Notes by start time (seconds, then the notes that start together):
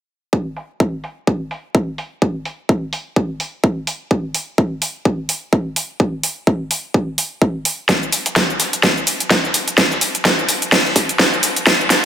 0.33 kick
0.56 open hi-hat
0.80 kick
1.04 open hi-hat
1.27 kick
1.51 open hi-hat
1.75 kick
1.98 open hi-hat
2.22 kick
2.45 open hi-hat
2.69 kick
2.93 open hi-hat
3.16 kick
3.40 open hi-hat
3.64 kick
3.87 open hi-hat
4.11 kick
4.34 open hi-hat
4.58 kick
4.82 open hi-hat
5.05 kick
5.29 open hi-hat
5.53 kick
5.76 open hi-hat
6.00 kick
6.23 open hi-hat
6.47 kick
6.71 open hi-hat
6.94 kick
7.18 open hi-hat
7.42 kick
7.65 open hi-hat
7.89 kick, snare, closed hi-hat, tambourine, shaker
8.03 shaker
8.12 open hi-hat, tambourine, shaker
8.26 closed hi-hat, shaker
8.36 kick, snare, closed hi-hat, tambourine, shaker
8.50 shaker
8.60 snare, open hi-hat, tambourine, shaker
8.73 closed hi-hat, shaker
8.83 kick, snare, closed hi-hat, tambourine, shaker
8.97 shaker
9.07 open hi-hat, tambourine, shaker
9.20 closed hi-hat, shaker
9.30 kick, snare, closed hi-hat, tambourine, shaker
9.44 snare, shaker
9.54 open hi-hat, tambourine, shaker
9.68 closed hi-hat, shaker
9.78 kick, snare, closed hi-hat, tambourine, shaker
9.91 snare, shaker
10.01 open hi-hat, tambourine, shaker
10.15 closed hi-hat, shaker
10.25 kick, snare, closed hi-hat, tambourine, shaker
10.39 shaker
10.49 open hi-hat, tambourine, shaker
10.62 closed hi-hat, shaker
10.72 kick, snare, closed hi-hat, open hi-hat, shaker
10.86 shaker
10.96 kick, open hi-hat, tambourine, shaker
11.09 closed hi-hat, shaker
11.19 kick, snare, closed hi-hat, tambourine, shaker
11.33 shaker
11.43 open hi-hat, tambourine, shaker
11.56 closed hi-hat, shaker
11.67 kick, snare, closed hi-hat, tambourine, shaker
11.81 shaker
11.90 snare, open hi-hat, tambourine, shaker